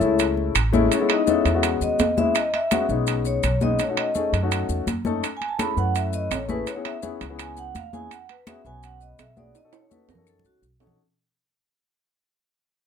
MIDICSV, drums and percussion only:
0, 0, Header, 1, 2, 480
1, 0, Start_track
1, 0, Tempo, 359712
1, 1218, Time_signature, 4, 2, 24, 8
1, 17172, End_track
2, 0, Start_track
2, 0, Title_t, "Drums"
2, 15, Note_on_c, 9, 70, 28
2, 16, Note_on_c, 9, 63, 34
2, 149, Note_off_c, 9, 63, 0
2, 149, Note_off_c, 9, 70, 0
2, 251, Note_on_c, 9, 63, 32
2, 252, Note_on_c, 9, 70, 66
2, 263, Note_on_c, 9, 65, 68
2, 385, Note_off_c, 9, 63, 0
2, 386, Note_off_c, 9, 70, 0
2, 397, Note_off_c, 9, 65, 0
2, 498, Note_on_c, 9, 63, 34
2, 631, Note_off_c, 9, 63, 0
2, 734, Note_on_c, 9, 75, 64
2, 735, Note_on_c, 9, 70, 54
2, 737, Note_on_c, 9, 63, 31
2, 741, Note_on_c, 9, 65, 92
2, 868, Note_off_c, 9, 70, 0
2, 868, Note_off_c, 9, 75, 0
2, 871, Note_off_c, 9, 63, 0
2, 874, Note_off_c, 9, 65, 0
2, 980, Note_on_c, 9, 63, 83
2, 983, Note_on_c, 9, 70, 27
2, 1113, Note_off_c, 9, 63, 0
2, 1116, Note_off_c, 9, 70, 0
2, 1220, Note_on_c, 9, 63, 34
2, 1221, Note_on_c, 9, 65, 62
2, 1225, Note_on_c, 9, 70, 69
2, 1353, Note_off_c, 9, 63, 0
2, 1355, Note_off_c, 9, 65, 0
2, 1359, Note_off_c, 9, 70, 0
2, 1452, Note_on_c, 9, 75, 55
2, 1463, Note_on_c, 9, 65, 83
2, 1465, Note_on_c, 9, 63, 36
2, 1585, Note_off_c, 9, 75, 0
2, 1596, Note_off_c, 9, 65, 0
2, 1598, Note_off_c, 9, 63, 0
2, 1697, Note_on_c, 9, 70, 65
2, 1705, Note_on_c, 9, 63, 54
2, 1830, Note_off_c, 9, 70, 0
2, 1838, Note_off_c, 9, 63, 0
2, 1941, Note_on_c, 9, 65, 63
2, 1943, Note_on_c, 9, 63, 35
2, 1946, Note_on_c, 9, 70, 31
2, 2075, Note_off_c, 9, 65, 0
2, 2076, Note_off_c, 9, 63, 0
2, 2080, Note_off_c, 9, 70, 0
2, 2175, Note_on_c, 9, 75, 58
2, 2177, Note_on_c, 9, 65, 86
2, 2179, Note_on_c, 9, 70, 63
2, 2192, Note_on_c, 9, 63, 27
2, 2308, Note_off_c, 9, 75, 0
2, 2311, Note_off_c, 9, 65, 0
2, 2312, Note_off_c, 9, 70, 0
2, 2325, Note_off_c, 9, 63, 0
2, 2421, Note_on_c, 9, 70, 52
2, 2426, Note_on_c, 9, 63, 33
2, 2554, Note_off_c, 9, 70, 0
2, 2560, Note_off_c, 9, 63, 0
2, 2657, Note_on_c, 9, 70, 65
2, 2665, Note_on_c, 9, 65, 62
2, 2665, Note_on_c, 9, 66, 67
2, 2667, Note_on_c, 9, 63, 76
2, 2790, Note_off_c, 9, 70, 0
2, 2798, Note_off_c, 9, 65, 0
2, 2798, Note_off_c, 9, 66, 0
2, 2801, Note_off_c, 9, 63, 0
2, 2903, Note_on_c, 9, 70, 27
2, 2906, Note_on_c, 9, 63, 78
2, 3037, Note_off_c, 9, 70, 0
2, 3039, Note_off_c, 9, 63, 0
2, 3134, Note_on_c, 9, 75, 61
2, 3135, Note_on_c, 9, 70, 63
2, 3144, Note_on_c, 9, 65, 86
2, 3149, Note_on_c, 9, 63, 31
2, 3268, Note_off_c, 9, 75, 0
2, 3269, Note_off_c, 9, 70, 0
2, 3277, Note_off_c, 9, 65, 0
2, 3282, Note_off_c, 9, 63, 0
2, 3385, Note_on_c, 9, 65, 64
2, 3386, Note_on_c, 9, 63, 32
2, 3518, Note_off_c, 9, 65, 0
2, 3519, Note_off_c, 9, 63, 0
2, 3618, Note_on_c, 9, 65, 76
2, 3619, Note_on_c, 9, 70, 64
2, 3624, Note_on_c, 9, 75, 62
2, 3627, Note_on_c, 9, 63, 88
2, 3752, Note_off_c, 9, 65, 0
2, 3753, Note_off_c, 9, 70, 0
2, 3758, Note_off_c, 9, 75, 0
2, 3761, Note_off_c, 9, 63, 0
2, 3860, Note_on_c, 9, 70, 29
2, 3865, Note_on_c, 9, 63, 34
2, 3994, Note_off_c, 9, 70, 0
2, 3999, Note_off_c, 9, 63, 0
2, 4095, Note_on_c, 9, 70, 60
2, 4106, Note_on_c, 9, 63, 33
2, 4108, Note_on_c, 9, 65, 68
2, 4228, Note_off_c, 9, 70, 0
2, 4240, Note_off_c, 9, 63, 0
2, 4241, Note_off_c, 9, 65, 0
2, 4335, Note_on_c, 9, 70, 51
2, 4343, Note_on_c, 9, 63, 29
2, 4469, Note_off_c, 9, 70, 0
2, 4477, Note_off_c, 9, 63, 0
2, 4578, Note_on_c, 9, 70, 64
2, 4583, Note_on_c, 9, 75, 57
2, 4585, Note_on_c, 9, 63, 29
2, 4586, Note_on_c, 9, 65, 78
2, 4712, Note_off_c, 9, 70, 0
2, 4716, Note_off_c, 9, 75, 0
2, 4719, Note_off_c, 9, 63, 0
2, 4719, Note_off_c, 9, 65, 0
2, 4818, Note_on_c, 9, 70, 28
2, 4822, Note_on_c, 9, 63, 74
2, 4951, Note_off_c, 9, 70, 0
2, 4955, Note_off_c, 9, 63, 0
2, 5056, Note_on_c, 9, 70, 66
2, 5058, Note_on_c, 9, 63, 30
2, 5065, Note_on_c, 9, 65, 64
2, 5189, Note_off_c, 9, 70, 0
2, 5192, Note_off_c, 9, 63, 0
2, 5198, Note_off_c, 9, 65, 0
2, 5297, Note_on_c, 9, 75, 49
2, 5302, Note_on_c, 9, 65, 87
2, 5303, Note_on_c, 9, 63, 35
2, 5430, Note_off_c, 9, 75, 0
2, 5435, Note_off_c, 9, 65, 0
2, 5436, Note_off_c, 9, 63, 0
2, 5533, Note_on_c, 9, 70, 64
2, 5547, Note_on_c, 9, 63, 49
2, 5666, Note_off_c, 9, 70, 0
2, 5680, Note_off_c, 9, 63, 0
2, 5786, Note_on_c, 9, 63, 32
2, 5786, Note_on_c, 9, 70, 27
2, 5787, Note_on_c, 9, 65, 67
2, 5919, Note_off_c, 9, 70, 0
2, 5920, Note_off_c, 9, 63, 0
2, 5921, Note_off_c, 9, 65, 0
2, 6023, Note_on_c, 9, 63, 29
2, 6026, Note_on_c, 9, 70, 68
2, 6028, Note_on_c, 9, 75, 61
2, 6030, Note_on_c, 9, 65, 92
2, 6156, Note_off_c, 9, 63, 0
2, 6159, Note_off_c, 9, 70, 0
2, 6162, Note_off_c, 9, 75, 0
2, 6163, Note_off_c, 9, 65, 0
2, 6260, Note_on_c, 9, 70, 50
2, 6268, Note_on_c, 9, 63, 32
2, 6394, Note_off_c, 9, 70, 0
2, 6401, Note_off_c, 9, 63, 0
2, 6502, Note_on_c, 9, 63, 76
2, 6504, Note_on_c, 9, 70, 59
2, 6508, Note_on_c, 9, 65, 57
2, 6635, Note_off_c, 9, 63, 0
2, 6638, Note_off_c, 9, 70, 0
2, 6641, Note_off_c, 9, 65, 0
2, 6736, Note_on_c, 9, 63, 74
2, 6743, Note_on_c, 9, 70, 25
2, 6870, Note_off_c, 9, 63, 0
2, 6877, Note_off_c, 9, 70, 0
2, 6982, Note_on_c, 9, 63, 30
2, 6985, Note_on_c, 9, 70, 60
2, 6986, Note_on_c, 9, 75, 56
2, 6990, Note_on_c, 9, 65, 81
2, 7115, Note_off_c, 9, 63, 0
2, 7119, Note_off_c, 9, 70, 0
2, 7119, Note_off_c, 9, 75, 0
2, 7124, Note_off_c, 9, 65, 0
2, 7223, Note_on_c, 9, 63, 33
2, 7228, Note_on_c, 9, 65, 59
2, 7357, Note_off_c, 9, 63, 0
2, 7361, Note_off_c, 9, 65, 0
2, 7463, Note_on_c, 9, 63, 83
2, 7463, Note_on_c, 9, 75, 56
2, 7466, Note_on_c, 9, 70, 58
2, 7467, Note_on_c, 9, 65, 78
2, 7596, Note_off_c, 9, 63, 0
2, 7596, Note_off_c, 9, 75, 0
2, 7599, Note_off_c, 9, 70, 0
2, 7600, Note_off_c, 9, 65, 0
2, 7704, Note_on_c, 9, 70, 29
2, 7705, Note_on_c, 9, 63, 29
2, 7838, Note_off_c, 9, 63, 0
2, 7838, Note_off_c, 9, 70, 0
2, 7941, Note_on_c, 9, 70, 69
2, 7943, Note_on_c, 9, 63, 29
2, 7948, Note_on_c, 9, 65, 62
2, 8075, Note_off_c, 9, 70, 0
2, 8076, Note_off_c, 9, 63, 0
2, 8082, Note_off_c, 9, 65, 0
2, 8179, Note_on_c, 9, 63, 29
2, 8179, Note_on_c, 9, 70, 52
2, 8312, Note_off_c, 9, 63, 0
2, 8312, Note_off_c, 9, 70, 0
2, 8419, Note_on_c, 9, 75, 54
2, 8420, Note_on_c, 9, 63, 29
2, 8421, Note_on_c, 9, 70, 61
2, 8426, Note_on_c, 9, 65, 81
2, 8426, Note_on_c, 9, 66, 61
2, 8553, Note_off_c, 9, 63, 0
2, 8553, Note_off_c, 9, 75, 0
2, 8554, Note_off_c, 9, 70, 0
2, 8560, Note_off_c, 9, 65, 0
2, 8560, Note_off_c, 9, 66, 0
2, 8659, Note_on_c, 9, 70, 26
2, 8663, Note_on_c, 9, 63, 74
2, 8793, Note_off_c, 9, 70, 0
2, 8796, Note_off_c, 9, 63, 0
2, 8896, Note_on_c, 9, 70, 63
2, 8902, Note_on_c, 9, 65, 62
2, 8904, Note_on_c, 9, 63, 31
2, 9030, Note_off_c, 9, 70, 0
2, 9036, Note_off_c, 9, 65, 0
2, 9037, Note_off_c, 9, 63, 0
2, 9139, Note_on_c, 9, 75, 51
2, 9142, Note_on_c, 9, 65, 79
2, 9148, Note_on_c, 9, 63, 34
2, 9273, Note_off_c, 9, 75, 0
2, 9275, Note_off_c, 9, 65, 0
2, 9282, Note_off_c, 9, 63, 0
2, 9376, Note_on_c, 9, 70, 60
2, 9385, Note_on_c, 9, 63, 54
2, 9509, Note_off_c, 9, 70, 0
2, 9519, Note_off_c, 9, 63, 0
2, 9619, Note_on_c, 9, 70, 26
2, 9622, Note_on_c, 9, 65, 61
2, 9625, Note_on_c, 9, 63, 29
2, 9753, Note_off_c, 9, 70, 0
2, 9756, Note_off_c, 9, 65, 0
2, 9759, Note_off_c, 9, 63, 0
2, 9858, Note_on_c, 9, 75, 56
2, 9862, Note_on_c, 9, 70, 65
2, 9867, Note_on_c, 9, 65, 85
2, 9869, Note_on_c, 9, 63, 25
2, 9991, Note_off_c, 9, 75, 0
2, 9996, Note_off_c, 9, 70, 0
2, 10000, Note_off_c, 9, 65, 0
2, 10002, Note_off_c, 9, 63, 0
2, 10099, Note_on_c, 9, 70, 50
2, 10105, Note_on_c, 9, 63, 29
2, 10232, Note_off_c, 9, 70, 0
2, 10239, Note_off_c, 9, 63, 0
2, 10342, Note_on_c, 9, 70, 55
2, 10343, Note_on_c, 9, 63, 61
2, 10351, Note_on_c, 9, 65, 58
2, 10475, Note_off_c, 9, 70, 0
2, 10477, Note_off_c, 9, 63, 0
2, 10485, Note_off_c, 9, 65, 0
2, 10585, Note_on_c, 9, 63, 75
2, 10590, Note_on_c, 9, 70, 27
2, 10718, Note_off_c, 9, 63, 0
2, 10724, Note_off_c, 9, 70, 0
2, 10823, Note_on_c, 9, 75, 58
2, 10825, Note_on_c, 9, 65, 79
2, 10830, Note_on_c, 9, 63, 28
2, 10830, Note_on_c, 9, 70, 57
2, 10956, Note_off_c, 9, 75, 0
2, 10959, Note_off_c, 9, 65, 0
2, 10963, Note_off_c, 9, 63, 0
2, 10963, Note_off_c, 9, 70, 0
2, 11066, Note_on_c, 9, 65, 60
2, 11070, Note_on_c, 9, 63, 34
2, 11199, Note_off_c, 9, 65, 0
2, 11203, Note_off_c, 9, 63, 0
2, 11300, Note_on_c, 9, 75, 62
2, 11301, Note_on_c, 9, 63, 91
2, 11303, Note_on_c, 9, 70, 61
2, 11306, Note_on_c, 9, 65, 64
2, 11434, Note_off_c, 9, 63, 0
2, 11434, Note_off_c, 9, 75, 0
2, 11436, Note_off_c, 9, 70, 0
2, 11439, Note_off_c, 9, 65, 0
2, 11544, Note_on_c, 9, 63, 31
2, 11546, Note_on_c, 9, 70, 27
2, 11677, Note_off_c, 9, 63, 0
2, 11679, Note_off_c, 9, 70, 0
2, 11782, Note_on_c, 9, 70, 62
2, 11784, Note_on_c, 9, 63, 30
2, 11792, Note_on_c, 9, 65, 58
2, 11915, Note_off_c, 9, 70, 0
2, 11917, Note_off_c, 9, 63, 0
2, 11925, Note_off_c, 9, 65, 0
2, 12018, Note_on_c, 9, 70, 45
2, 12031, Note_on_c, 9, 63, 29
2, 12152, Note_off_c, 9, 70, 0
2, 12164, Note_off_c, 9, 63, 0
2, 12259, Note_on_c, 9, 70, 58
2, 12264, Note_on_c, 9, 75, 59
2, 12265, Note_on_c, 9, 65, 73
2, 12265, Note_on_c, 9, 66, 57
2, 12266, Note_on_c, 9, 63, 28
2, 12392, Note_off_c, 9, 70, 0
2, 12398, Note_off_c, 9, 65, 0
2, 12398, Note_off_c, 9, 66, 0
2, 12398, Note_off_c, 9, 75, 0
2, 12399, Note_off_c, 9, 63, 0
2, 12501, Note_on_c, 9, 70, 24
2, 12504, Note_on_c, 9, 63, 69
2, 12634, Note_off_c, 9, 70, 0
2, 12637, Note_off_c, 9, 63, 0
2, 12742, Note_on_c, 9, 70, 59
2, 12743, Note_on_c, 9, 65, 53
2, 12746, Note_on_c, 9, 63, 31
2, 12875, Note_off_c, 9, 70, 0
2, 12877, Note_off_c, 9, 65, 0
2, 12880, Note_off_c, 9, 63, 0
2, 12977, Note_on_c, 9, 75, 45
2, 12980, Note_on_c, 9, 65, 77
2, 12983, Note_on_c, 9, 70, 47
2, 12991, Note_on_c, 9, 63, 28
2, 13110, Note_off_c, 9, 75, 0
2, 13114, Note_off_c, 9, 65, 0
2, 13117, Note_off_c, 9, 70, 0
2, 13125, Note_off_c, 9, 63, 0
2, 13226, Note_on_c, 9, 70, 61
2, 13231, Note_on_c, 9, 63, 65
2, 13359, Note_off_c, 9, 70, 0
2, 13365, Note_off_c, 9, 63, 0
2, 13460, Note_on_c, 9, 66, 64
2, 13468, Note_on_c, 9, 70, 26
2, 13544, Note_on_c, 9, 64, 79
2, 13593, Note_off_c, 9, 66, 0
2, 13602, Note_off_c, 9, 70, 0
2, 13678, Note_off_c, 9, 64, 0
2, 13701, Note_on_c, 9, 70, 61
2, 13701, Note_on_c, 9, 75, 60
2, 13834, Note_off_c, 9, 70, 0
2, 13835, Note_off_c, 9, 75, 0
2, 13870, Note_on_c, 9, 64, 57
2, 13943, Note_on_c, 9, 70, 47
2, 14003, Note_off_c, 9, 64, 0
2, 14076, Note_off_c, 9, 70, 0
2, 14185, Note_on_c, 9, 70, 53
2, 14318, Note_off_c, 9, 70, 0
2, 14416, Note_on_c, 9, 66, 71
2, 14426, Note_on_c, 9, 70, 26
2, 14506, Note_on_c, 9, 64, 78
2, 14549, Note_off_c, 9, 66, 0
2, 14560, Note_off_c, 9, 70, 0
2, 14639, Note_off_c, 9, 64, 0
2, 17172, End_track
0, 0, End_of_file